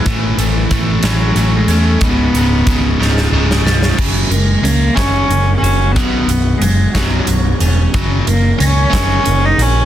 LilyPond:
<<
  \new Staff \with { instrumentName = "Cello" } { \time 6/8 \key cis \minor \tempo 4. = 61 r8 e4 fis8. gis16 a8 | b2 r4 | \key fis \mixolydian r8 gis8 ais8 cis'4 cis'8 | b4 gis8 fis4 r8 |
r8 ais8 cis'4~ cis'16 dis'16 cis'8 | }
  \new Staff \with { instrumentName = "Clean electric guitar" } { \clef bass \time 6/8 \key cis \minor a,8 e8 a8 cis'8 a8 cis'8 | cis,8 gis,8 cis8 eis8 cis8 eis8 | \key fis \mixolydian fis,8 ais8 cis'8 fis8 ais8 fis'8 | b,,8 b,8 fis8 fis,8 b,8 cis'8 |
fis,8 ais8 cis'8 fis8 ais8 fis'8 | }
  \new Staff \with { instrumentName = "Overdriven electric guitar" } { \clef bass \time 6/8 \key cis \minor <a, e a>8 <a, e a>8 <a, e a>8 <a, e a>8 <a, e a>8 <a, e a>8 | <cis, gis, cis>8 <cis, gis, cis>8 <cis, gis, cis>8 <cis, gis, cis>8 <cis, gis, cis>8 <cis, gis, cis>8 | \key fis \mixolydian <fis, cis fis>8 <fis, cis>8 <fis, cis>8 <fis, cis fis>8 <fis, cis>8 r8 | <b,, fis, b,>8 <b,, fis,>8 <b,, fis,>8 <b,, fis, b,>8 <b,, fis,>8 r8 |
<fis, cis fis>8 <fis, cis>8 <fis, cis>8 <fis, cis fis>8 <fis, cis>8 r8 | }
  \new Staff \with { instrumentName = "Picked electric bass" } { \clef bass \time 6/8 \key cis \minor a,,8 a,,8 a,,8 a,,8 a,,8 e,8 | cis,,8 cis,,8 cis,,8 cis,,8 cis,,8 b,,,8 | \key fis \mixolydian fis,,8 fis,,8 cis,8 fis,,8 fis,,8 fis,,8 | b,,,8 b,,,8 fis,,8 b,,,8 b,,,8 e,,8 |
fis,,8 fis,,8 cis,8 fis,,8 fis,,8 ais,,8 | }
  \new DrumStaff \with { instrumentName = "Drums" } \drummode { \time 6/8 <hh bd>8 hh8 <hh bd>8 <hh sn>8 hh8 hh8 | <hh bd>8 hh8 <hh bd>8 sn16 sn8 sn16 sn16 sn16 | <cymc bd>8 hh8 hh8 <hh bd sn>8 hh8 hh8 | <hh bd>8 hh8 hh8 <hh bd sn>8 hh8 hh8 |
<hh bd>8 hh8 hh8 <hh bd sn>8 hh8 hh8 | }
>>